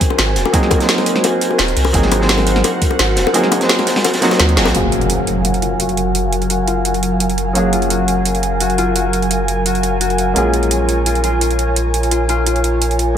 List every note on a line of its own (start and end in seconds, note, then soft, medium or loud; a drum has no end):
0.00 0.53 F#3 medium
0.00 0.53 A#3 medium
0.00 0.54 C4 medium
0.00 0.54 D#4 medium
0.00 4.71 F#4 medium
0.00 0.55 G#4 loud
0.00 4.71 A#4 medium
0.00 0.53 C5 medium
0.00 4.71 C5 medium
0.00 1.90 G#5 loud
0.00 kick loud
0.00 closed hi-hat medium
0.10 high bongo medium
0.18 0.38 G#1 medium
0.18 snare loud
0.18 closed hi-hat medium
0.36 0.44 D#1 medium
0.36 snare medium
0.36 closed hi-hat medium
0.45 high bongo medium
0.53 0.77 F#3 medium
0.53 0.78 A#3 medium
0.53 0.78 C4 medium
0.53 0.79 D#4 medium
0.53 0.79 G#4 loud
0.53 kick loud
0.53 closed hi-hat medium
0.63 snare soft
0.71 kick loud
0.71 closed hi-hat medium
0.71 high bongo medium
0.78 1.91 F#3 medium
0.78 1.91 A#3 medium
0.78 1.92 C4 medium
0.78 1.93 D#4 medium
0.78 snare medium
0.78 closed hi-hat soft
0.83 1.93 C5 medium
0.89 snare loud
0.89 closed hi-hat medium
0.89 closed hi-hat loud
0.98 snare soft
0.98 closed hi-hat soft
0.98 high bongo medium
1.06 closed hi-hat medium
1.16 snare soft
1.24 closed hi-hat medium
1.24 high bongo medium
1.41 closed hi-hat medium
1.51 high bongo medium
1.58 1.75 D#1 medium
1.58 snare loud
1.58 closed hi-hat medium
1.68 closed hi-hat soft
1.76 1.92 C2 medium
1.76 closed hi-hat medium
1.76 open hi-hat medium
1.85 high bongo medium
1.93 2.63 G#1 loud
1.93 2.17 F#3 medium
1.93 2.18 A#3 medium
1.93 2.19 C4 medium
1.93 2.19 D#4 medium
1.93 2.19 G#4 loud
1.93 4.72 F#5 loud
1.93 kick loud
1.93 closed hi-hat medium
2.02 snare medium
2.02 snare soft
2.12 closed hi-hat medium
2.12 high bongo loud
2.19 3.31 F#3 medium
2.19 3.32 A#3 medium
2.19 3.32 C4 medium
2.19 3.33 D#4 medium
2.19 snare medium
2.23 3.34 C5 medium
2.29 snare loud
2.29 closed hi-hat loud
2.29 closed hi-hat medium
2.38 snare soft
2.38 closed hi-hat soft
2.38 high bongo medium
2.47 closed hi-hat medium
2.56 snare soft
2.64 closed hi-hat loud
2.64 closed hi-hat medium
2.64 high bongo medium
2.82 kick loud
2.82 closed hi-hat medium
2.91 high bongo medium
2.99 3.18 G#1 medium
2.99 snare loud
2.99 closed hi-hat loud
2.99 closed hi-hat medium
3.16 3.25 D#1 medium
3.16 snare loud
3.16 closed hi-hat medium
3.27 high bongo medium
3.33 3.57 F#3 medium
3.33 3.58 A#3 medium
3.33 3.59 C4 medium
3.33 3.59 D#4 medium
3.33 3.59 G#4 medium
3.33 closed hi-hat medium
3.44 snare soft
3.52 closed hi-hat medium
3.52 high bongo medium
3.59 4.19 F#3 medium
3.59 4.20 A#3 medium
3.59 4.20 C4 medium
3.59 4.21 D#4 medium
3.59 snare medium
3.59 closed hi-hat soft
3.63 4.22 C5 medium
3.69 snare loud
3.69 closed hi-hat loud
3.69 closed hi-hat medium
3.78 snare soft
3.78 closed hi-hat soft
3.78 high bongo medium
3.87 snare loud
3.87 closed hi-hat medium
3.96 snare medium
3.96 closed hi-hat medium
4.04 snare loud
4.04 closed hi-hat loud
4.04 closed hi-hat medium
4.04 high bongo medium
4.14 snare loud
4.14 closed hi-hat soft
4.14 closed hi-hat medium
4.21 4.55 F#3 medium
4.21 4.55 A#3 medium
4.21 4.55 C4 medium
4.21 4.55 D#4 medium
4.21 4.56 F#4 loud
4.21 snare loud
4.21 closed hi-hat medium
4.31 snare loud
4.31 closed hi-hat medium
4.31 high bongo medium
4.39 4.59 D#2 medium
4.39 snare loud
4.39 closed hi-hat medium
4.39 closed hi-hat loud
4.49 closed hi-hat soft
4.56 4.68 D#1 loud
4.56 4.71 F#3 medium
4.56 4.72 A#3 medium
4.56 4.72 C4 medium
4.56 4.72 D#4 medium
4.56 4.73 G#4 medium
4.56 snare medium
4.56 closed hi-hat medium
4.56 open hi-hat medium
4.65 4.74 C2 loud
4.65 snare loud
4.65 closed hi-hat medium
4.65 high bongo loud
4.72 10.34 F#1 medium
4.72 7.52 F#3 medium
4.72 10.32 F#3 medium
4.72 7.53 A#3 medium
4.72 7.53 C#4 medium
4.72 5.44 F#4 medium
4.72 13.18 A#4 medium
4.72 10.32 F5 medium
4.72 7.54 F5 medium
4.72 13.18 G#5 medium
4.72 closed hi-hat medium
4.72 impact medium
4.77 7.54 G#4 medium
4.92 closed hi-hat medium
5.01 closed hi-hat soft
5.10 closed hi-hat medium
5.27 closed hi-hat medium
5.45 5.68 F#4 medium
5.45 closed hi-hat medium
5.54 closed hi-hat soft
5.62 5.86 F4 medium
5.62 closed hi-hat medium
5.80 6.50 F#4 medium
5.80 closed hi-hat medium
5.89 closed hi-hat soft
5.97 closed hi-hat medium
6.15 closed hi-hat medium
6.33 closed hi-hat medium
6.42 closed hi-hat soft
6.50 6.74 F#4 medium
6.50 closed hi-hat medium
6.68 6.91 F4 medium
6.68 closed hi-hat medium
6.85 7.55 F#4 medium
6.85 closed hi-hat medium
6.94 closed hi-hat soft
7.03 closed hi-hat medium
7.20 closed hi-hat medium
7.30 closed hi-hat soft
7.38 closed hi-hat medium
7.53 10.33 F#3 medium
7.53 10.33 A#3 medium
7.53 10.34 C#4 medium
7.53 7.79 F#4 medium
7.53 10.35 F5 medium
7.53 closed hi-hat medium
7.58 10.35 G#4 medium
7.73 7.96 F4 medium
7.73 closed hi-hat medium
7.82 closed hi-hat soft
7.90 8.60 F#4 medium
7.90 closed hi-hat medium
8.08 closed hi-hat medium
8.26 closed hi-hat medium
8.35 closed hi-hat soft
8.43 closed hi-hat medium
8.61 8.84 F#4 medium
8.61 closed hi-hat medium
8.70 closed hi-hat soft
8.78 9.02 F4 medium
8.78 closed hi-hat medium
8.96 9.65 F#4 medium
8.96 closed hi-hat medium
9.13 closed hi-hat medium
9.22 closed hi-hat soft
9.31 closed hi-hat medium
9.48 closed hi-hat medium
9.66 10.01 F#4 medium
9.66 closed hi-hat medium
9.75 closed hi-hat soft
9.83 closed hi-hat medium
10.01 10.42 F#4 medium
10.01 closed hi-hat medium
10.10 closed hi-hat soft
10.18 closed hi-hat medium
10.34 13.18 A#1 medium
10.34 13.13 G#3 medium
10.34 13.14 A#3 medium
10.34 13.15 C#4 medium
10.34 11.06 F4 medium
10.34 13.18 F4 medium
10.34 13.15 F4 medium
10.34 13.18 C#5 medium
10.34 closed hi-hat medium
10.38 13.16 G#4 medium
10.54 closed hi-hat medium
10.63 closed hi-hat soft
10.71 closed hi-hat medium
10.89 closed hi-hat medium
11.06 11.23 F4 medium
11.06 closed hi-hat medium
11.15 closed hi-hat soft
11.24 11.41 F4 medium
11.24 closed hi-hat medium
11.41 12.11 F4 medium
11.41 closed hi-hat medium
11.51 closed hi-hat soft
11.59 closed hi-hat medium
11.76 closed hi-hat medium
11.94 closed hi-hat medium
12.03 closed hi-hat soft
12.11 12.29 F4 medium
12.11 closed hi-hat medium
12.29 12.46 F4 medium
12.29 closed hi-hat medium
12.47 13.16 F4 medium
12.47 closed hi-hat medium
12.56 closed hi-hat soft
12.64 closed hi-hat medium
12.82 closed hi-hat medium
12.91 closed hi-hat soft
12.99 closed hi-hat medium
13.15 13.18 G#3 medium